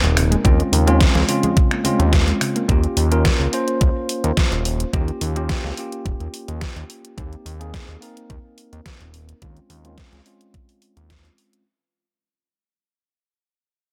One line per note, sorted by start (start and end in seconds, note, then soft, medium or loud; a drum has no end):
0.00 0.36 D#1 loud
0.00 0.12 G3 medium
0.00 0.41 A#3 medium
0.00 0.41 C4 medium
0.00 0.42 D#4 medium
0.00 0.42 A#4 medium
0.00 closed hi-hat soft
0.17 0.21 C3 medium
0.17 finger snap medium
0.17 open hi-hat loud
0.31 0.40 G#3 medium
0.31 closed hi-hat medium
0.44 0.62 D#2 medium
0.44 0.55 C#3 loud
0.44 0.84 G#3 medium
0.44 0.84 C4 medium
0.44 0.84 C#4 medium
0.44 0.84 F4 medium
0.44 kick loud
0.44 closed hi-hat medium
0.59 0.63 G#3 medium
0.59 closed hi-hat soft
0.73 1.06 D#2 medium
0.73 0.83 C#3 medium
0.73 open hi-hat loud
0.87 1.25 G#3 medium
0.87 0.97 A#3 medium
0.87 1.25 C4 medium
0.87 1.26 C#4 medium
0.87 1.26 F4 loud
0.87 closed hi-hat soft
1.01 1.08 C#3 medium
1.01 kick loud
1.01 snare loud
1.01 closed hi-hat medium
1.15 1.24 C#2 medium
1.15 1.22 C#4 loud
1.15 snare soft
1.15 low conga medium
1.28 1.33 C#3 loud
1.28 1.82 G#3 medium
1.28 1.82 C4 medium
1.28 1.82 C#4 medium
1.28 1.82 F4 medium
1.28 open hi-hat loud
1.43 1.53 G#3 loud
1.43 closed hi-hat soft
1.43 low conga medium
1.57 1.67 C#3 loud
1.57 kick loud
1.57 closed hi-hat medium
1.71 1.75 A#3 medium
1.71 finger snap medium
1.71 closed hi-hat soft
1.84 1.95 C#3 medium
1.84 2.65 G#3 medium
1.84 2.66 C4 medium
1.84 2.66 C#4 medium
1.84 2.66 F4 medium
1.84 open hi-hat medium
1.84 high conga medium
1.99 2.33 D#2 loud
1.99 2.03 C#4 medium
1.99 closed hi-hat soft
2.13 2.17 C#3 medium
2.13 kick loud
2.13 snare loud
2.13 closed hi-hat medium
2.28 2.37 G#3 medium
2.28 closed hi-hat soft
2.41 2.45 C#3 medium
2.41 finger snap medium
2.41 open hi-hat loud
2.56 2.65 A#3 loud
2.56 closed hi-hat soft
2.68 2.87 D#2 medium
2.68 3.08 A#3 medium
2.68 3.08 C#4 medium
2.68 3.08 F4 medium
2.68 3.08 G4 medium
2.68 kick loud
2.68 closed hi-hat medium
2.84 closed hi-hat soft
2.97 3.31 D#2 medium
2.97 open hi-hat loud
3.11 3.50 A#3 medium
3.11 3.50 C#4 medium
3.11 3.50 F4 medium
3.11 3.50 A#4 medium
3.11 closed hi-hat soft
3.25 kick loud
3.25 snare loud
3.25 closed hi-hat medium
3.40 3.48 C#2 medium
3.52 4.89 A#3 medium
3.52 4.90 C#4 medium
3.52 4.90 F4 medium
3.52 4.91 C5 medium
3.52 open hi-hat medium
3.68 closed hi-hat soft
3.81 3.90 C#2 medium
3.81 kick loud
3.81 closed hi-hat medium
4.09 open hi-hat loud
4.24 4.32 D#2 medium
4.24 closed hi-hat soft
4.37 kick loud
4.37 snare loud
4.37 closed hi-hat medium
4.52 4.85 D#1 loud
4.52 closed hi-hat soft
4.65 open hi-hat loud
4.80 closed hi-hat soft
4.93 5.11 D#2 medium
4.93 5.32 A#3 medium
4.93 5.33 C#4 medium
4.93 5.33 F4 medium
4.93 5.33 G4 medium
4.93 kick loud
4.93 closed hi-hat medium
5.08 closed hi-hat soft
5.21 5.55 D#2 medium
5.21 open hi-hat loud
5.36 5.74 A#3 medium
5.36 5.74 C#4 medium
5.36 5.74 F4 medium
5.36 5.75 G4 medium
5.36 closed hi-hat soft
5.49 kick loud
5.49 snare loud
5.49 closed hi-hat medium
5.64 5.72 C#2 medium
5.64 snare soft
5.77 7.14 A#3 medium
5.77 7.14 C#4 medium
5.77 7.15 F4 medium
5.77 7.15 G4 medium
5.77 open hi-hat medium
5.92 closed hi-hat soft
6.06 6.15 D#1 medium
6.06 kick loud
6.06 closed hi-hat medium
6.20 6.28 D#2 medium
6.20 closed hi-hat soft
6.34 open hi-hat medium
6.48 6.65 D#2 medium
6.48 closed hi-hat soft
6.61 kick loud
6.61 snare loud
6.61 closed hi-hat medium
6.76 6.84 D#2 medium
6.76 closed hi-hat soft
6.90 open hi-hat medium
7.05 closed hi-hat soft
7.17 7.35 D#2 medium
7.17 7.57 A#3 medium
7.17 7.57 C4 medium
7.17 7.57 D#4 medium
7.17 7.57 G4 medium
7.17 kick loud
7.17 closed hi-hat medium
7.33 closed hi-hat soft
7.46 7.79 D#2 medium
7.46 open hi-hat medium
7.60 7.98 A#3 medium
7.60 7.98 C4 medium
7.60 7.99 D#4 medium
7.60 7.99 G#4 medium
7.60 closed hi-hat soft
7.74 kick loud
7.74 snare loud
7.74 closed hi-hat medium
7.88 7.97 D#2 medium
8.01 9.38 A#3 medium
8.01 9.39 C4 medium
8.01 9.39 D#4 medium
8.01 9.39 A#4 medium
8.01 open hi-hat medium
8.17 closed hi-hat soft
8.30 8.39 D#2 medium
8.30 kick loud
8.30 closed hi-hat medium
8.58 open hi-hat medium
8.73 8.81 D#2 medium
8.73 closed hi-hat soft
8.86 kick loud
8.86 snare loud
8.86 closed hi-hat medium
9.01 9.34 D#1 medium
9.01 closed hi-hat soft
9.14 open hi-hat medium
9.29 closed hi-hat medium
9.42 9.60 D#2 medium
9.42 9.81 G#3 medium
9.42 9.81 C4 medium
9.42 9.81 C#4 medium
9.42 9.82 F4 medium
9.42 kick loud
9.42 closed hi-hat medium
9.57 closed hi-hat soft
9.70 10.04 D#2 medium
9.70 open hi-hat medium
9.85 10.23 G#3 medium
9.85 10.23 C4 medium
9.85 10.23 C#4 medium
9.85 10.23 F4 medium
9.85 closed hi-hat soft
9.98 kick loud
9.98 snare loud
9.98 closed hi-hat medium
10.13 10.21 C#2 medium
10.13 snare soft
10.13 closed hi-hat soft
10.25 11.63 G#3 medium
10.25 11.63 C4 medium
10.25 11.63 C#4 medium
10.25 11.64 F4 medium
10.25 open hi-hat medium
10.41 closed hi-hat soft
10.54 kick loud
10.54 closed hi-hat medium
10.69 open hi-hat medium
10.82 open hi-hat medium
10.97 11.30 D#2 loud
10.97 closed hi-hat soft
11.10 kick loud
11.10 snare loud
11.10 closed hi-hat medium
11.25 closed hi-hat soft
11.38 open hi-hat medium
11.53 closed hi-hat soft